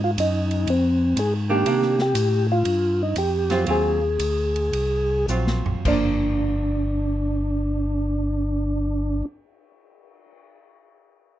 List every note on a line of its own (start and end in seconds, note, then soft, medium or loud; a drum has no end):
0.00 0.17 G#2 medium
0.04 0.11 F4 medium
0.18 0.66 F#2 medium
0.18 0.70 D#4 medium
0.18 hi-hat pedal medium
0.18 ride medium
0.51 ride soft
0.67 1.15 F2 medium
0.67 1.19 C4 medium
0.67 ride medium
1.16 1.64 G#2 medium
1.16 1.34 G#4 medium
1.16 hi-hat pedal soft
1.16 ride medium
1.49 1.65 D#3 medium
1.49 1.65 A#3 medium
1.49 1.66 D4 medium
1.49 2.00 G4 medium
1.66 2.14 C3 medium
1.66 1.96 D#3 medium
1.66 1.96 A#3 medium
1.66 1.96 D4 medium
1.66 ride medium
1.82 snare soft
1.99 2.47 G4 medium
1.99 snare soft
2.15 2.63 A2 medium
2.15 hi-hat pedal medium
2.15 ride medium
2.52 3.02 F4 medium
2.65 3.14 G2 medium
2.65 ride soft
3.03 3.17 D#4 medium
3.16 3.66 F2 medium
3.16 3.65 G4 medium
3.16 hi-hat pedal soft
3.16 ride medium
3.50 3.65 F#3 medium
3.50 3.66 C4 medium
3.50 3.66 F4 medium
3.50 snare soft
3.50 ride soft
3.66 4.18 D#2 medium
3.66 3.99 F#3 medium
3.66 3.99 C4 soft
3.66 3.99 F4 medium
3.66 ride soft
3.71 5.26 G#4 medium
4.19 4.71 D2 medium
4.19 hi-hat pedal soft
4.19 ride medium
4.56 ride soft
4.73 5.27 C2 medium
4.73 ride medium
5.28 5.63 A#1 medium
5.28 5.85 F#3 soft
5.28 5.86 C4 soft
5.28 5.86 F4 soft
5.28 hi-hat pedal medium
5.47 snare soft
5.66 5.76 A#1 soft
5.66 floor tom medium
5.85 9.22 G1 medium
5.85 9.27 F3 soft
5.85 9.28 A#3 medium
5.85 9.25 D4 medium
5.85 9.30 D4 medium
5.85 kick medium
5.85 crash medium
6.23 cymbal swell soft